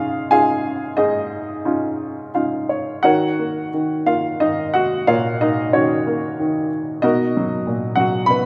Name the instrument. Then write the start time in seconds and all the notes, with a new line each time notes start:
upright piano
Already playing: C#3 C#4 D#4 F4 G#4 D#5 F5
0.31 C#4 D#4 F4 G#4 F5 G#5
0.97 G#2 D#4 G#4 D#5
1.65 C#4 D#4 F4
2.34 C#4 D#4 F4 F5
2.69 C#5
3.03 D#3 F#4 A#4 C#5 F#5
3.39 A#3
3.74 D#3
4.06 A#3 F4 F5
4.40 D#3 D#4 D#5
4.74 F#4 F#5
5.07 A#2 F4 A#4 C#5 F5
5.41 A#3 D#4 D#5
5.73 D#3 C#4 F#4 C#5
6.07 A#3
6.39 D#3
7.02 B2 D#4 F#4 A#4 D#5
7.37 F#3
7.67 A#2
7.96 F#3 F#5
8.00 F#4
8.26 B2 B5
8.31 B4